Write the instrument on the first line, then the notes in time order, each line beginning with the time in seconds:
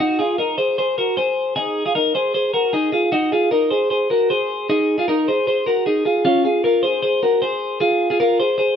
clean electric guitar
0.00 D#4 F#4
0.19 F4 G#4
0.38 D#4 A#4
0.58 G#4 C5
0.78 G#4 C5
0.98 F#4 A#4
1.17 G#4 C5
1.56 D#4 G#4
1.86 F4 G#4
1.95 D#4 A#4
2.15 G#4 C5
2.34 G#4 C5
2.54 F#4 A#4
2.73 D#4 G#4
2.92 F4 G#4
3.12 D#4 F#4
3.32 F4 G#4
3.51 D#4 A#4
3.71 G#4 C5
3.90 G#4 C5
4.10 F#4 A#4
4.30 G#4 C5
4.70 D#4 G#4
4.98 F4 G#4
5.08 D#4 A#4
5.28 G#4 C5
5.47 G#4 C5
5.66 F#4 A#4
5.86 D#4 G#4
6.05 F4 G#4
6.25 C#4 F4
6.45 F4 G#4
6.64 F4 A#4
6.83 G#4 C5
7.02 G#4 C5
7.23 F#4 A#4
7.42 G#4 C5
7.80 F4 G#4
8.10 F4 G#4
8.20 F4 A#4
8.40 G#4 C5
8.58 G#4 C5